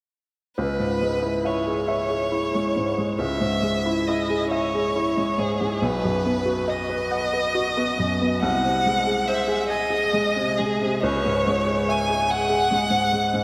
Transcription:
0.57 grand piano C#2, violin B4
0.79 grand piano G#2
1.01 grand piano G#3
1.22 grand piano E4
1.45 violin C#5, grand piano E5
1.67 grand piano G#4
1.88 grand piano E5
2.10 grand piano G#4
2.32 grand piano E4
2.54 grand piano G#3
2.76 grand piano G#2
2.98 grand piano G#3
3.19 grand piano C#2, violin E5
3.40 grand piano G#2
3.62 grand piano G#3
3.86 grand piano E4
4.08 grand piano E4, violin D#5
4.30 grand piano G#4
4.51 violin C#5, grand piano E5
4.74 grand piano G#4
4.96 grand piano E4
5.17 grand piano G#3
5.38 grand piano G#2, violin G#4
5.61 grand piano G#3
5.82 grand piano B1, violin B4
6.04 grand piano F#2
6.25 grand piano B3
6.45 grand piano F#4
6.68 grand piano D#5, violin D#5
6.90 grand piano B4
7.11 grand piano F#5
7.33 grand piano B4
7.55 grand piano F#4
7.77 grand piano B3
7.98 grand piano F#2
8.22 grand piano B3
8.42 grand piano C2, violin F#5
8.64 grand piano C3
8.86 grand piano G#3
9.07 grand piano G#4
9.27 grand piano C5, violin E5
9.48 grand piano G#4
9.68 violin D#5, grand piano G#5
9.90 grand piano G#4
10.13 grand piano G#3
10.36 grand piano C3
10.57 grand piano G#3, violin G#4
10.81 grand piano C3
11.02 grand piano C#2, violin C#5
11.25 grand piano G#2
11.47 grand piano G#3
11.66 grand piano G#4
11.89 grand piano E5, violin G#5
12.10 grand piano G#4
12.28 violin F#5, grand piano G#5
12.49 grand piano G#4
12.71 grand piano G#3
12.90 grand piano G#2
13.12 grand piano G#3
13.33 grand piano G#2

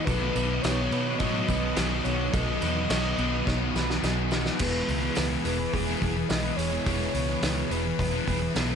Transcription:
Already playing: clean electric guitar B4
0.05 fingered electric bass B1, overdriven electric guitar B2 D#3 F#3 B3 D#4, clean electric guitar A4, soft synth lead B4, string machine B4 D#5 F#5 D#6, kick, tambourine, crash
0.34 fingered electric bass B1, overdriven electric guitar F#3 B3 D#4, clean electric guitar B4, tambourine, crash
0.62 fingered electric bass B1, distorted electric guitar B2, overdriven electric guitar D#3 F#3 B3 D#4, soft synth lead C#5, clean electric guitar C#5, snare, tambourine, crash
0.91 fingered electric bass B2, overdriven electric guitar F#3 B3 D#4, clean electric guitar B4, tambourine, crash
1.19 fingered electric bass A2, overdriven electric guitar B2 D#3 F#3 B3 D#4, clean electric guitar C#5, soft synth lead D#5, kick, tambourine, crash
1.47 fingered electric bass B1, overdriven electric guitar F#3 B3 D#4, clean electric guitar B4, kick, tambourine, crash
1.76 fingered electric bass B1, distorted electric guitar B2, overdriven electric guitar D#3 F#3 B3 D#4, clean electric guitar G#4, snare, tambourine, crash
2.04 fingered electric bass B1, overdriven electric guitar F#3 B3 D#4, clean electric guitar F#4, soft synth lead C#5, tambourine, crash
2.32 fingered electric bass B1, overdriven electric guitar B2 D#3 F#3 B3 D#4, clean electric guitar A4, soft synth lead D#5, kick, tambourine, crash
2.61 fingered electric bass E2, overdriven electric guitar F#3 B3 D#4, clean electric guitar B4, tambourine, crash
2.89 fingered electric bass B1, distorted electric guitar B2, overdriven electric guitar D#3 F#3 B3 D#4, clean electric guitar C#5, snare, tambourine, crash
3.17 fingered electric bass B1, overdriven electric guitar F#3 B3 D#4, clean electric guitar B4, tambourine, crash
3.45 fingered electric bass B1, overdriven electric guitar B2 D#3 F#3 B3 D#4, clean electric guitar C#5, kick, snare, tambourine
3.74 fingered electric bass B1, overdriven electric guitar F#3 B3 D#4, clean electric guitar B4, snare, tambourine
3.90 snare
4.01 fingered electric bass B1, distorted electric guitar B2, overdriven electric guitar D#3 F#3 B3 D#4, clean electric guitar G#4, snare, tambourine
4.29 overdriven electric guitar F#3 B3 D#4, snare, tambourine
4.33 clean electric guitar F#4
4.46 snare
4.58 fingered electric bass E1, distorted electric guitar E2 B2, overdriven electric guitar E3 G#3 B3 E4, clean electric guitar G#4, soft synth lead B4, string machine B4 E5 G#5 D#6, kick, crash, tambourine
4.63 distorted electric guitar E3
4.88 fingered electric bass C#2, clean electric guitar B4, open hi-hat
5.01 distorted electric guitar B2 E3, overdriven electric guitar G#3 B3 E4
5.15 fingered electric bass C#2, distorted electric guitar E2 B2, overdriven electric guitar E3 G#3 B3 E4, clean electric guitar B4, snare, open hi-hat, tambourine
5.44 fingered electric bass E1, distorted electric guitar E2 B2, overdriven electric guitar E3 G#3 B3 E4, clean electric guitar G#4, soft synth lead B4, open hi-hat, tambourine
5.59 muted overdriven electric guitar stroke, muted distorted electric guitar stroke
5.73 fingered electric bass E1, soft synth lead G#4, clean electric guitar B4, kick, open hi-hat, tambourine
5.87 distorted electric guitar B2 E3, overdriven electric guitar G#3 B3 E4
6.00 fingered electric bass E1, distorted electric guitar E2 B2, overdriven electric guitar E3 G#3 B3 E4, soft synth lead G#4, clean electric guitar G#4, kick, open hi-hat
6.05 distorted electric guitar E3
6.16 muted overdriven electric guitar stroke, muted distorted electric guitar stroke
6.29 fingered electric bass B1, distorted electric guitar E2 B2, overdriven electric guitar E3 G#3 B3 E4, clean electric guitar B4, soft synth lead D#5, snare, open hi-hat, tambourine
6.33 distorted electric guitar E3
6.43 overdriven electric guitar G#3 B3 E4
6.56 fingered electric bass E1, clean electric guitar G#4, soft synth lead C#5, open hi-hat, tambourine
6.70 distorted electric guitar E3, overdriven electric guitar G#3 B3 E4
6.75 distorted electric guitar B2
6.86 fingered electric bass E1, distorted electric guitar E2 B2, overdriven electric guitar E3 G#3 B3 E4, clean electric guitar G#4, kick, open hi-hat, tambourine
7.14 fingered electric bass C#2, clean electric guitar B4, open hi-hat, tambourine
7.28 distorted electric guitar B2 E3, overdriven electric guitar G#3 B3 E4
7.41 fingered electric bass C#2, distorted electric guitar E2, overdriven electric guitar E3 G#3 B3 E4, clean electric guitar B4, snare, open hi-hat, tambourine
7.45 distorted electric guitar B2 E3
7.69 fingered electric bass E1, distorted electric guitar E2 B2, overdriven electric guitar E3 G#3 B3 E4, clean electric guitar G#4, soft synth lead B4, open hi-hat, tambourine
7.74 distorted electric guitar E3
7.83 muted overdriven electric guitar stroke, muted distorted electric guitar stroke
7.99 fingered electric bass E1, soft synth lead B4, clean electric guitar B4, kick, open hi-hat, tambourine
8.11 distorted electric guitar E3, overdriven electric guitar G#3 B3 E4
8.15 distorted electric guitar B2
8.25 fingered electric bass E1, distorted electric guitar E2 B2, overdriven electric guitar E3 G#3 B3 E4, clean electric guitar G#4, kick, open hi-hat
8.30 distorted electric guitar E3
8.41 muted overdriven electric guitar stroke, muted distorted electric guitar stroke
8.54 fingered electric bass B1, distorted electric guitar E2 B2, overdriven electric guitar E3 G#3 B3 E4, clean electric guitar B4, snare, open hi-hat, tambourine
8.67 overdriven electric guitar G#3 B3 E4

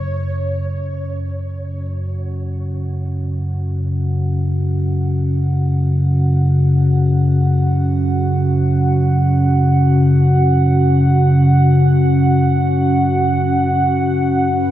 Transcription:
Already playing: synth texture C#5
0.09 synth drone F#2 C#3, analog synth pad C#4
1.63 analog synth pad F#4
1.96 analog synth pad F#5
14.50 synth drone F#2 C#3, synth texture B4

